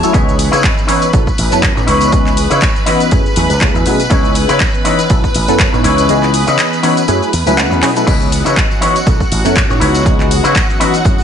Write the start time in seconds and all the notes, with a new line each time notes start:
Already playing: C#5 A5 C#6
0.03 F#3 A3 C#4 E4 A4, closed hi-hat, tambourine, shaker
0.13 C#2 E3 B3 C#4 D#4 E4 G#4 B4 C#5 D#5 B5, kick, closed hi-hat, tambourine, shaker
0.29 tambourine, shaker
0.39 open hi-hat, shaker
0.51 C#3 D#4 E4 B4 C#5, closed hi-hat, tambourine, shaker
0.64 kick, clap, closed hi-hat, shaker
0.77 tambourine, shaker
0.87 E3 B3 C#4 D#4 E4 B4 C#5, open hi-hat, shaker
1.02 closed hi-hat, tambourine, shaker
1.12 B1 F#3 B3 C#4 E4 A4, muted clean electric guitar stroke, kick, closed hi-hat, tambourine, shaker
1.27 kick, tambourine, shaker
1.38 A1, open hi-hat, shaker
1.51 F#2 F#3 B3 C#4 E4 A4, muted clean electric guitar stroke, closed hi-hat, tambourine, shaker
1.62 muted clean electric guitar stroke, kick, clap, closed hi-hat, tambourine, shaker
1.75 A2 E3 B3 C#4 D#4 C#5, muted clean electric guitar stroke, tambourine, shaker
1.86 C#2 D#4 E4 B4 C#5, open hi-hat, shaker
2.01 closed hi-hat, tambourine, shaker
2.12 C#2 E3 B3 C#4 G#4 D#5, kick, closed hi-hat, shaker
2.26 clap, tambourine, shaker
2.37 open hi-hat, shaker
2.50 C#3 D#4 E4 B4 C#5, closed hi-hat, tambourine, shaker
2.62 kick, clap, closed hi-hat, tambourine, shaker
2.76 tambourine, shaker
2.86 E3 B3 C#4 D#4 E4 F#4 B4 D#5, open hi-hat, shaker
3.00 closed hi-hat, tambourine, shaker
3.11 F#2 F#3 A3 C#4 E4 G#4, muted clean electric guitar stroke, kick, closed hi-hat, tambourine, shaker
3.26 tambourine, shaker
3.36 E2 F#3 A3 C#4 E4 G#4, open hi-hat, shaker
3.50 C#2, muted clean electric guitar stroke, closed hi-hat, tambourine, shaker
3.60 F#3 A3 C#4 E4 G#4, muted clean electric guitar stroke, kick, clap, closed hi-hat, shaker
3.74 E2, muted clean electric guitar stroke, tambourine, shaker
3.85 B2 F#3 A3 C#4 E4 G#4, muted clean electric guitar stroke, open hi-hat, shaker
4.00 closed hi-hat, tambourine, shaker
4.10 C#2 E3 B3 C#4 D#4 E4 G#4 B4 C#5 D#5, kick, closed hi-hat, tambourine, shaker
4.25 tambourine, shaker
4.35 open hi-hat, shaker
4.49 C#3 D#4 E4 B4 C#5, closed hi-hat, tambourine, shaker
4.60 kick, clap, closed hi-hat, tambourine, shaker
4.74 tambourine, shaker
4.84 E3 B3 C#4 D#4 E4 B4 C#5 D#5, open hi-hat, shaker
4.99 closed hi-hat, tambourine, shaker
5.09 B1 F#3 B3 C#4 E4 A4, muted clean electric guitar stroke, kick, closed hi-hat, tambourine, shaker
5.24 kick, tambourine, shaker
5.34 A1, open hi-hat, shaker
5.48 F#2 F#3 B3 C#4 E4 A4, muted clean electric guitar stroke, closed hi-hat, tambourine, shaker
5.59 muted clean electric guitar stroke, kick, clap, closed hi-hat, tambourine, shaker
5.73 A2 E3 B3 C#4 D#4 C#5, muted clean electric guitar stroke, tambourine, shaker
5.83 C#2 D#4 E4 B4 C#5, open hi-hat, shaker
5.98 closed hi-hat, tambourine, shaker
6.08 C#2 E3 B3 C#4 G#4 D#5, closed hi-hat, tambourine, shaker
6.23 clap, tambourine, shaker
6.34 open hi-hat, shaker
6.47 C#3 D#4 E4 B4 D#5, closed hi-hat, tambourine, shaker
6.59 clap, closed hi-hat, tambourine, shaker
6.73 tambourine, shaker
6.83 E3 B3 C#4 D#4 E4 F#4 B4 C#5, open hi-hat, shaker
6.97 closed hi-hat, tambourine, shaker
7.08 F#2 F#3 A3 C#4 E4 G#4, muted clean electric guitar stroke, closed hi-hat, tambourine, shaker
7.22 tambourine, shaker
7.33 E2, open hi-hat, shaker
7.46 C#2 F#3 A3 C#4 E4 B4, muted clean electric guitar stroke, closed hi-hat, tambourine, shaker
7.57 F#5, muted clean electric guitar stroke, clap, closed hi-hat, tambourine, shaker
7.71 E2, muted clean electric guitar stroke, tambourine, shaker
7.82 B2 F#3 A3 C#4 E4 G#4 C#5, muted clean electric guitar stroke, clap, open hi-hat, shaker
7.96 F#3 A3 C#4 E4 A4, closed hi-hat, tambourine, shaker
8.06 C#2 E3 B3 C#4 D#4 E4 F#4 B4 C#5 D#5 F#5, kick, closed hi-hat, crash, tambourine, shaker
8.20 tambourine, shaker
8.32 open hi-hat, shaker
8.45 C#3 D#4 E4 B4 C#5, closed hi-hat, tambourine, shaker
8.57 kick, clap, closed hi-hat, shaker
8.71 tambourine, shaker
8.81 E3 B3 C#4 D#4 E4 B4 C#5, open hi-hat, shaker
8.96 closed hi-hat, tambourine, shaker
9.06 B1 F#3 B3 C#4 E4 A4, muted clean electric guitar stroke, kick, closed hi-hat, tambourine, shaker
9.20 kick, tambourine, shaker
9.32 A1, open hi-hat, shaker
9.44 F#2 F#3 B3 C#4 E4 A4, muted clean electric guitar stroke, closed hi-hat, tambourine, shaker
9.55 muted clean electric guitar stroke, kick, clap, closed hi-hat, shaker
9.69 A2 E3 B3 C#4 D#4 C#5, muted clean electric guitar stroke, tambourine, shaker
9.80 C#2 D#4 E4 B4 C#5, open hi-hat, shaker
9.94 closed hi-hat, tambourine, shaker
10.05 C#2 E3 B3 C#4 G#4 D#5, kick, closed hi-hat, shaker
10.20 clap, tambourine, shaker
10.31 open hi-hat, shaker
10.44 C#3 D#4 E4 B4 C#5, closed hi-hat, tambourine, shaker
10.55 kick, clap, closed hi-hat, tambourine, shaker
10.69 tambourine, shaker
10.79 E3 B3 C#4 D#4 E4 F#4 B4 D#5, open hi-hat, shaker
10.94 closed hi-hat, tambourine, shaker
11.04 F#2 F#3 A3 C#4 E4 G#4, muted clean electric guitar stroke, kick, closed hi-hat, tambourine, shaker
11.18 tambourine, shaker